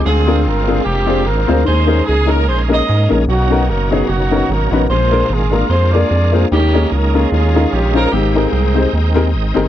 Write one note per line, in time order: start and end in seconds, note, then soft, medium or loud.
0.04 0.48 D2 loud
0.04 0.64 D3 medium
0.04 1.63 G#3 medium
0.04 1.64 C4 medium
0.04 0.82 C4 medium
0.04 0.10 C#4 soft
0.04 1.63 F4 medium
0.04 0.82 F4 medium
0.04 0.43 G#4 loud
0.04 1.63 A#4 medium
0.09 1.66 D4 medium
0.27 0.38 C4 medium
0.27 0.38 D4 medium
0.27 0.39 F4 medium
0.27 0.39 G#4 medium
0.27 0.39 A#4 medium
0.46 0.80 G1 medium
0.46 0.68 A#4 loud
0.67 0.79 C4 medium
0.67 0.78 D4 medium
0.67 0.79 F4 medium
0.67 0.86 G#4 loud
0.67 0.79 G#4 medium
0.67 0.79 A#4 medium
0.85 1.29 F1 medium
0.85 1.62 A#3 medium
0.85 1.62 C4 medium
0.85 1.26 G4 medium
1.06 1.18 C4 medium
1.06 1.19 D4 medium
1.06 1.18 F4 medium
1.06 1.19 G#4 medium
1.06 1.19 C5 medium
1.24 1.46 G#1 loud
1.24 1.48 A#4 loud
1.48 1.64 D2 loud
1.48 1.59 C4 medium
1.48 1.59 D4 medium
1.48 1.59 F4 medium
1.48 1.60 G#4 medium
1.48 1.66 A#4 loud
1.48 1.60 C5 medium
1.64 2.02 D#2 loud
1.64 2.24 D#3 medium
1.64 3.25 G#3 medium
1.64 3.25 A#3 medium
1.64 3.25 C#4 medium
1.64 3.25 D#4 medium
1.64 2.04 G#4 medium
1.64 3.25 A#4 medium
1.64 2.04 C5 loud
1.87 1.99 A#3 medium
1.87 1.99 C#4 medium
1.87 1.99 D#4 medium
1.87 1.99 G#4 medium
1.87 1.99 A#4 medium
2.05 2.49 C#2 loud
2.05 2.28 G#4 medium
2.26 2.38 A#3 medium
2.26 2.39 C#4 medium
2.26 2.39 D#4 medium
2.26 2.39 G#4 medium
2.26 2.39 A#4 medium
2.30 2.48 A#4 medium
2.48 2.82 A#1 medium
2.48 2.71 G#4 medium
2.48 2.58 C5 medium
2.69 2.80 A#3 medium
2.69 2.80 C#4 medium
2.69 2.80 D#4 medium
2.69 2.80 G#4 medium
2.69 3.12 G#4 medium
2.69 2.81 A#4 medium
2.69 3.12 A#4 medium
2.69 3.08 D#5 loud
2.89 3.08 G#2 loud
3.09 3.26 A#1 loud
3.09 3.20 A#3 medium
3.09 3.21 C#4 medium
3.09 3.21 D#4 medium
3.09 3.21 G#4 medium
3.09 3.21 A#4 medium
3.28 3.71 B1 medium
3.28 3.87 B2 medium
3.28 4.87 B2 medium
3.28 4.87 F#3 medium
3.28 4.05 A#3 medium
3.28 4.87 C#4 medium
3.28 4.05 D#4 medium
3.28 4.88 D#4 medium
3.28 3.66 F#4 medium
3.28 4.87 A#4 medium
3.50 3.61 B3 medium
3.50 3.61 C#4 medium
3.50 3.62 D#4 medium
3.50 3.62 F#4 medium
3.50 3.62 A#4 medium
3.68 4.03 F#1 medium
3.68 3.91 A#4 medium
3.91 4.02 B3 medium
3.91 4.02 C#4 medium
3.91 4.02 D#4 medium
3.91 4.02 F#4 medium
3.91 4.07 G#4 medium
3.91 4.03 C#5 medium
4.08 4.43 F#1 medium
4.08 4.85 A#3 medium
4.08 4.85 D#4 medium
4.08 4.49 F#4 medium
4.31 4.42 B3 medium
4.31 4.42 C#4 medium
4.31 4.42 D#4 medium
4.31 4.42 F#4 medium
4.31 4.43 A#4 medium
4.48 4.68 G#1 loud
4.48 4.70 A#4 loud
4.71 4.87 A1 loud
4.71 4.82 B3 medium
4.71 4.83 C#4 medium
4.71 4.83 D#4 medium
4.71 4.83 F#4 medium
4.71 4.88 A#4 medium
4.71 4.83 B4 medium
4.89 5.24 A#1 loud
4.89 5.49 A#2 medium
4.89 6.48 G#3 medium
4.89 6.48 A#3 medium
4.89 6.48 D4 medium
4.89 5.67 F4 medium
4.89 6.48 F4 medium
4.89 5.29 G#4 medium
4.89 6.48 A#4 medium
4.89 5.30 C5 loud
5.11 5.22 A#3 medium
5.11 5.23 D4 medium
5.11 5.23 F4 medium
5.11 5.23 G#4 medium
5.11 5.23 A#4 medium
5.30 5.64 G#1 loud
5.30 5.53 G#4 medium
5.51 5.63 A#3 medium
5.51 5.63 D4 medium
5.51 5.63 F4 medium
5.51 5.63 G#4 medium
5.51 5.70 A#4 medium
5.51 5.63 A#4 medium
5.70 6.04 F2 medium
5.70 5.90 F4 medium
5.70 5.91 G#4 medium
5.70 5.91 C5 medium
5.91 6.04 A#3 medium
5.91 6.04 D4 medium
5.91 6.46 F4 medium
5.91 6.05 F4 medium
5.91 6.47 G#4 medium
5.91 6.04 G#4 medium
5.91 6.05 A#4 medium
5.91 6.32 D5 loud
6.11 6.45 F2 medium
6.32 6.43 A#3 medium
6.32 6.44 D4 medium
6.32 6.44 F4 medium
6.32 6.44 G#4 medium
6.32 6.44 C5 medium
6.51 6.86 D#2 medium
6.51 7.11 D#3 medium
6.51 7.30 G#3 medium
6.51 7.28 A#3 medium
6.51 7.31 A#3 medium
6.51 7.13 C#4 medium
6.51 7.31 C#4 medium
6.51 7.30 D#4 medium
6.51 6.88 G4 medium
6.51 7.30 A#4 medium
6.74 6.85 A#3 medium
6.74 6.84 C#4 medium
6.74 6.85 D#4 medium
6.74 6.85 G#4 medium
6.74 6.85 A#4 medium
6.91 7.26 C#2 loud
6.91 7.12 A#4 medium
7.13 7.24 A#3 medium
7.13 7.90 C#4 medium
7.13 7.25 C#4 medium
7.13 7.25 D#4 medium
7.13 7.90 F4 medium
7.13 7.72 G#4 loud
7.13 7.25 G#4 medium
7.13 7.25 A#4 medium
7.32 7.66 D#2 loud
7.32 7.91 D#3 medium
7.32 8.10 G#3 medium
7.32 8.12 C#4 medium
7.32 8.10 D#4 medium
7.32 8.12 F4 medium
7.32 8.11 A#4 medium
7.54 7.65 C#4 medium
7.54 7.65 D#4 medium
7.54 7.66 F4 medium
7.54 7.66 G#4 medium
7.54 7.66 A#4 medium
7.72 8.07 A#1 medium
7.72 7.94 G4 medium
7.94 8.05 C#4 medium
7.94 8.05 D#4 medium
7.94 8.05 F4 medium
7.94 8.05 G#4 medium
7.94 8.04 A#4 medium
7.94 8.06 C5 medium
8.06 8.13 A#4 medium
8.11 8.47 G#1 medium
8.11 8.71 G#2 medium
8.11 9.68 G#3 medium
8.11 8.89 A#3 medium
8.11 9.68 C4 medium
8.11 8.34 C4 medium
8.11 9.68 D#4 medium
8.11 8.33 G4 medium
8.11 9.68 A#4 medium
8.11 9.68 G5 medium
8.35 8.46 C4 medium
8.35 9.12 C4 medium
8.35 9.11 D#4 medium
8.35 8.46 D#4 medium
8.35 8.46 G4 medium
8.35 9.16 G#4 medium
8.35 8.46 G#4 medium
8.35 8.46 A#4 medium
8.53 8.87 C2 loud
8.74 8.85 C4 medium
8.74 8.86 D#4 medium
8.74 8.86 G4 medium
8.74 8.86 G#4 medium
8.74 8.86 C5 medium
8.93 9.35 D#2 medium
9.14 9.26 C4 medium
9.14 9.26 D#4 medium
9.14 9.26 G4 medium
9.14 9.26 G#4 medium
9.14 9.26 A#4 loud
9.34 9.52 G#1 loud
9.34 9.55 D#5 medium
9.54 9.68 G1 loud
9.54 9.66 C4 medium
9.54 9.66 D#4 medium
9.54 9.66 G4 medium
9.54 9.66 G#4 medium
9.54 9.67 A#4 loud
9.54 9.68 C5 medium